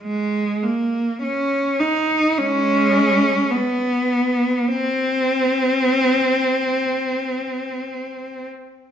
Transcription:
cello
0.03 G#3
0.63 A#3
1.23 C#4
1.80 D#4
2.38 G#3 C#4
3.51 B3
4.68 C4

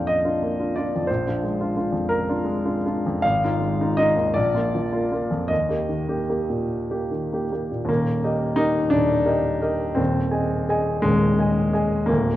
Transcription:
grand piano
Already playing: A#1 F2 A#3 D4 F4 F5 G5
0.07 D#5
0.25 D4 F4
0.42 A#3
0.60 D4 F4
0.76 D4 F4 D5
0.95 F2
1.07 A#1 C5
1.27 D4 F4
1.43 G#3
1.61 D4 F4
1.76 D4 F4
1.92 F2
2.09 A#4
2.29 D4 F4
2.45 G#3
2.65 D4 F4
2.86 D4 F4
3.06 F2
3.22 G#1 F5
3.44 D#4 F4
3.60 G#3
3.81 D#4 F4
3.97 D#4 F4 D#5
4.16 D#2
4.34 A#1 D5
4.54 A#3 F4
4.75 F3
4.92 A#3 F4
5.12 A#3 F4
5.31 F2
5.48 D#2 D#5
5.69 A#3 G4
5.89 D#3
6.08 A#3 G4
6.30 A#3 G4
6.50 A#2
6.91 A#3 G4
7.11 D#3
7.33 A#3 G4
7.52 A#3 G4
7.71 A#2
7.85 D#2 A#3
7.90 D#1
8.24 G4 A#4 D#5
8.56 D#4 G4 A#4 D#5
8.90 D#1 D#2 D4
9.26 G4 A#4 D#5
9.62 G4 A#4 D#5
9.95 D#1 D#2 C4
10.31 G#4 D#5 G#5
10.69 G#4 D#5 G#5
11.02 D#1 D#2 G#3
11.39 G#4 D#5 G#5
11.73 G#4 D#5 G#5
12.06 D1 D2 A#3

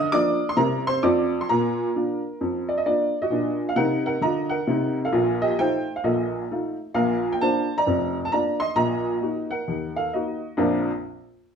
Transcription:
upright piano
Already playing: D#5
0.12 F3 A#3 D4 D5 D6
0.49 C6
0.57 C3 G3 C4 E4 A#4 A#5
0.87 C5 C6
1.03 F2 A3 C4 F4 D5 D6
1.41 C6
1.49 A#2 A#4 A#5
1.95 A#3 D4 F4
2.41 F2
2.69 D5
2.78 D#5
2.86 A#3 D4 F4 D5
3.22 F#4 D#5
3.30 A#2 D4
3.69 F5
3.76 C3 D#4 A#4 F#5
4.06 A#4 F#5
4.21 D3 F4 D#5 A#5
4.49 A#4 F#5
4.67 C3 D#4
5.05 A4 F5
5.12 A#1 A#2
5.42 G4 D#5
5.59 A3 D#4 F4 C5 G5
5.96 F5
6.04 A#1 A#2 A4 D#5
6.51 A3 D#4 F4
6.94 A#1 A#2 A#4 F5
7.32 G5
7.41 A#3 D4 F4 C5 A5
7.78 D5 A#5
7.87 F1 F2
8.25 A5
8.32 A#3 D4 F4 D5 A#5
8.60 D#5 C6
8.76 A#1 A#2 D#5 A#5
9.21 A#3 D#4 F#4
9.51 A#4 F#5
9.68 D#2 D#3
9.96 A4 F5
10.13 A#3 D#4 F#4 D#5
10.57 A#1 F2 F3 A#3 D4 F4 A#4

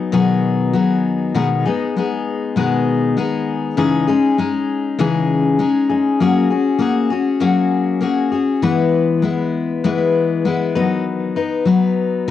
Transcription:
steel-string acoustic guitar
Already playing: F#3 B3 D#4 G#4
0.12 B2 D#3 F#3 B3 D#4 G#4
0.73 F#3 B3 D#4 G#4
1.35 B2 D#3 G#3 B3 D#4 G#4
1.65 G#3 B3 D#4 G#4
1.96 G#3 B3 D#4 G#4
2.56 B2 D#3 G#3 B3 D#4 G#4
3.17 G#3 B3 D#4 G#4
3.77 C#3 E3 G#3 C#4 D#4 G#4
4.07 G#3 C#4 D#4 G#4
4.38 G#3 C#4 D#4 G#4
4.99 C#3 E3 G#3 C#4 D#4 G#4
5.59 G#3 C#4 D#4 G#4
5.89 G#3 C#4 D#4 G#4
6.20 F#3 A#3 C#4 F#4 G#4
6.50 C#4 F#4 G#4
6.79 A#3 C#4 F#4 G#4
7.10 C#4 F#4 G#4
7.40 F#3 A#3 C#4 F#4 G#4
8.01 A#3 C#4 F#4 G#4
8.32 C#4 F#4 G#4
8.62 E3 G#3 B3 E4 B4
9.22 G#3 B3 E4 B4
9.84 E3 G#3 B3 E4 B4
10.45 G#3 B3 E4 B4
10.75 D#3 F#3 B3 D#4 B4
11.36 B3 D#4 B4
11.65 F#3 B3 D#4 B4

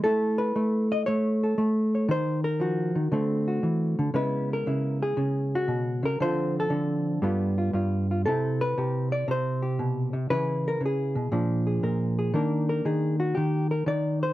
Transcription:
hollow-body jazz guitar
0.04 A3 E4 A4
0.38 B4
0.56 A3
0.92 D#5
1.06 A3 C#5
1.43 A4
1.58 A3
1.95 C#5
2.09 D#3 C5
2.44 A#4
2.60 F3 F#4
2.95 D#3
3.12 D3 A3 C4
3.48 F#4
3.63 E3
3.99 D3
4.14 C#3 G#3 B3 E4 B4
4.53 A#4
4.67 C#3 E4
5.03 G#4
5.17 C#3
5.55 F#4
5.68 B2
6.03 C#3 A#4
6.20 D3 F3 C4 F4 C5
6.60 A4
6.70 D3
7.22 G2 G3 B3 F4
7.58 F4
7.73 G2 F4
8.11 F4
8.26 C3 C4 E4 A4
8.61 B4
8.78 C3 G4
9.12 D5
9.28 C3 C5
9.62 G4
9.79 B2
10.13 C3
10.30 C#3 E3 E4 G#4 B4
10.68 A#4
10.81 C#3
10.86 G#4
11.15 B2
11.32 A#2 F3 D4
11.67 G#4
11.83 A#2 A#4
12.19 G#4
12.34 D#3 A#3 D4 A#4
12.69 A#4
12.85 D#3 G#4
13.20 F#4
13.35 D#3 G4
13.71 A#4
13.86 D#3 D5
14.23 C5

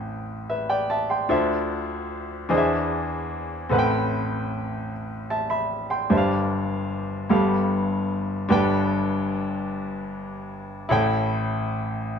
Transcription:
grand piano
Already playing: A1 A2 C4 A4 B4 G5
0.50 B4 E5
0.70 D5 G5
0.90 E5 A5
1.10 G5 C6
1.29 D2 D3 D4 F4 C5 E5
2.49 E2 E3 D4 G#4 C5 D#5
2.57 E5
3.69 A1 A2 C4 A4 B4 F#5
3.79 G5
5.30 E5 A5
5.50 E5 B5
5.90 G5 C6
6.10 G1 G2 D4 G4 C5 E5
6.17 F5
7.29 G1 G2 B3 G4 A4 F5
8.49 G1 G2 D4 G4 B4 G5
10.89 A1 A2 E4 A4 C#5 G5

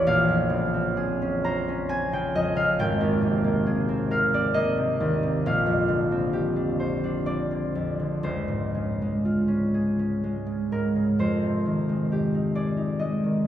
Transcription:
harp
Already playing: A1 E2 E3 D4 E4 F#4 D5 E5 A5
0.07 A#1 F5
0.28 F2
0.50 C#3
0.74 C4
0.97 G#4
1.22 C#4
1.44 C5 A#5
1.68 C#4
1.89 C4 G#5
2.12 C#3 G5
2.35 F2 D#5
2.56 C#3 F5
2.79 G#1 G5
3.01 D#2
3.22 C3
3.44 A#3
3.67 G#4
3.89 C4
4.11 A#4 F5
4.33 C4 D5
4.54 A#3 D#5
4.77 C3
5.00 D#2
5.23 C3
5.46 A#1 F5
5.66 F2
5.88 D3
6.12 C4
6.33 G4
6.56 D4
6.80 C5
7.04 D4
7.26 C4 D5
7.51 D3
7.75 F2
7.99 D3
8.23 C#2 C5
8.48 G#2
8.75 C#3
9.02 G#3
9.25 F4
9.48 C#4
9.74 G#4
9.99 C#4
10.24 G#3
10.46 C#3
10.72 G#2 A#4
10.96 C#3
11.19 F2 C5
11.42 C3
11.65 D#3
11.89 G#3
12.12 G4
12.34 D#4
12.55 G#4 D5
12.77 D#4
12.99 G#3 D#5
13.24 D#3

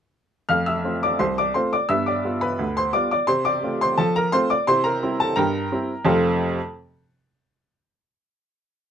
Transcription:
upright piano
0.49 F2 A3 F5 F6
0.66 E5 E6
0.84 A3 C4 F4
1.03 D5 D6
1.19 C2 C5 C6
1.38 D5 D6
1.54 A3 C4 F4 C5 C6
1.73 D5 D6
1.89 G2 B3 E5 E6
2.06 D5 D6
2.25 G3 B3 F4
2.41 B4 B5
2.59 D2
2.77 C5 C6
2.93 G3 B3 F4 D5 D6
3.11 D5 D6
3.27 C3 C5 C6
3.45 D5 D6
3.63 A3 C4 F4
3.81 C5 C6
3.98 F3 A4 A5
4.16 A#4 A#5
4.32 A3 C4 F4 C5 C6
4.50 D5 D6
4.67 C3 E4 C5 C6
4.84 A#4 A#5
5.02 G3 C4 E4
5.20 A4 A5
5.36 G2 A#4 G5 A#5
5.72 G3 C4 E4
6.05 F2 C3 A3 C4 F4 A4 A5

